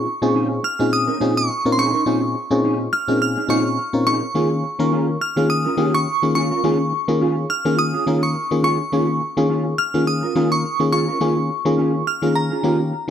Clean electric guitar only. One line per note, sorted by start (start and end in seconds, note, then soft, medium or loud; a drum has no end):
0.06 muted clean electric guitar stroke soft
0.22 0.33 C#4 medium
0.22 0.34 D#4 medium
0.22 0.33 G#4 medium
0.34 0.52 C#4 medium
0.34 0.50 D#4 medium
0.34 0.49 G#4 medium
0.51 muted clean electric guitar stroke soft
0.63 muted clean electric guitar stroke soft
0.79 0.90 C#4 medium
0.79 0.91 D#4 medium
0.79 0.90 G#4 medium
0.92 muted clean electric guitar stroke soft
1.07 1.19 C#4 medium
1.07 1.19 D#4 medium
1.07 1.19 A#4 medium
1.20 1.38 C#4 medium
1.20 1.36 D#4 medium
1.20 1.35 G#4 medium
1.36 muted clean electric guitar stroke soft
1.49 muted clean electric guitar stroke soft
1.65 muted clean electric guitar stroke soft
1.77 1.93 C#4 medium
1.77 1.93 D#4 medium
1.77 1.93 G#4 medium
1.93 2.05 C#4 soft
1.93 2.05 D#4 soft
1.93 2.05 A#4 medium
2.06 2.24 C#4 medium
2.06 2.22 D#4 medium
2.06 2.21 G#4 medium
2.22 muted clean electric guitar stroke soft
2.35 muted clean electric guitar stroke soft
2.51 2.63 C#4 soft
2.51 2.62 D#4 soft
2.51 2.62 A#4 medium
2.64 2.81 C#4 medium
2.64 2.79 D#4 medium
2.64 2.79 G#4 medium
2.80 muted clean electric guitar stroke soft
2.92 muted clean electric guitar stroke soft
3.08 3.20 C#4 medium
3.08 3.20 D#4 medium
3.08 3.19 A#4 medium
3.21 muted clean electric guitar stroke soft
3.37 3.48 C#4 medium
3.37 3.48 D#4 medium
3.37 3.48 G#4 medium
3.49 3.67 C#4 medium
3.49 3.65 D#4 medium
3.49 3.64 G#4 medium
3.65 muted clean electric guitar stroke soft
3.78 muted clean electric guitar stroke soft
3.94 muted clean electric guitar stroke soft
4.06 4.24 C#4 medium
4.06 4.22 D#4 medium
4.06 4.21 G#4 medium
4.23 muted clean electric guitar stroke soft
4.35 4.53 C#4 medium
4.35 4.50 F4 medium
4.35 4.50 G#4 medium
4.51 muted clean electric guitar stroke soft
4.63 muted clean electric guitar stroke soft
4.79 4.91 C#4 soft
4.79 4.91 F4 medium
4.79 4.90 G#4 medium
4.92 5.10 C#4 medium
4.92 5.08 F4 medium
4.92 5.07 G#4 medium
5.08 muted clean electric guitar stroke soft
5.21 muted clean electric guitar stroke soft
5.37 5.48 C#4 medium
5.37 5.48 F4 medium
5.37 5.48 G#4 medium
5.50 muted clean electric guitar stroke soft
5.65 5.76 C#4 medium
5.65 5.77 F4 medium
5.65 5.76 A#4 medium
5.77 5.95 C#4 medium
5.77 5.94 F4 medium
5.77 5.93 G#4 medium
5.94 muted clean electric guitar stroke soft
6.06 muted clean electric guitar stroke soft
6.23 muted clean electric guitar stroke soft
6.35 6.51 C#4 medium
6.35 6.50 F4 medium
6.35 6.50 G#4 medium
6.51 6.62 C#4 soft
6.51 6.62 F4 medium
6.51 6.62 A#4 medium
6.64 6.81 C#4 medium
6.64 6.79 F4 medium
6.64 6.79 G#4 loud
6.80 muted clean electric guitar stroke soft
6.92 muted clean electric guitar stroke soft
7.08 7.20 C#4 soft
7.08 7.19 F4 soft
7.08 7.19 A#4 medium
7.21 7.38 C#4 medium
7.21 7.36 F4 medium
7.21 7.36 G#4 medium
7.37 muted clean electric guitar stroke soft
7.50 muted clean electric guitar stroke soft
7.65 7.76 C#4 medium
7.65 7.77 F4 medium
7.65 7.76 A#4 medium
7.78 muted clean electric guitar stroke soft
7.94 8.05 C#4 soft
7.94 8.05 F4 medium
7.94 8.05 G#4 medium
8.06 8.24 C#4 medium
8.06 8.22 F4 medium
8.06 8.21 G#4 medium
8.22 muted clean electric guitar stroke soft
8.35 muted clean electric guitar stroke soft
8.51 muted clean electric guitar stroke soft
8.63 8.81 C#4 medium
8.63 8.79 F4 medium
8.63 8.78 G#4 medium
8.79 muted clean electric guitar stroke soft
8.92 9.10 C#4 medium
8.92 9.08 F4 medium
8.92 9.07 G#4 medium
9.08 muted clean electric guitar stroke soft
9.21 muted clean electric guitar stroke soft
9.37 9.48 C#4 medium
9.37 9.48 F4 medium
9.37 9.48 G#4 medium
9.49 9.67 C#4 medium
9.49 9.65 F4 medium
9.49 9.64 G#4 medium
9.65 muted clean electric guitar stroke soft
9.78 muted clean electric guitar stroke soft
9.94 10.05 C#4 medium
9.94 10.05 F4 medium
9.94 10.05 G#4 medium
10.07 muted clean electric guitar stroke soft
10.23 10.34 C#4 medium
10.23 10.34 F4 medium
10.23 10.34 A#4 medium
10.36 10.53 C#4 medium
10.36 10.51 F4 medium
10.36 10.50 G#4 medium
10.51 muted clean electric guitar stroke soft
10.64 muted clean electric guitar stroke soft
10.80 muted clean electric guitar stroke soft
10.92 11.08 C#4 medium
10.92 11.07 F4 medium
10.92 11.07 G#4 medium
11.08 11.19 C#4 medium
11.08 11.19 F4 medium
11.08 11.19 A#4 medium
11.21 11.38 C#4 medium
11.21 11.36 F4 medium
11.21 11.36 G#4 medium
11.37 muted clean electric guitar stroke soft
11.49 muted clean electric guitar stroke soft
11.65 11.76 C#4 soft
11.65 11.77 F4 medium
11.65 11.76 A#4 medium
11.78 11.95 C#4 medium
11.78 11.94 F4 medium
11.78 11.93 G#4 medium
11.94 muted clean electric guitar stroke soft
12.07 muted clean electric guitar stroke soft
12.22 12.34 C#4 medium
12.22 12.34 F4 medium
12.22 12.33 A#4 medium
12.35 muted clean electric guitar stroke soft
12.51 12.63 C#4 medium
12.51 12.63 F4 medium
12.51 12.62 G#4 medium
12.64 12.81 C#4 medium
12.64 12.80 F4 medium
12.64 12.79 G#4 medium
12.80 muted clean electric guitar stroke soft
12.93 muted clean electric guitar stroke soft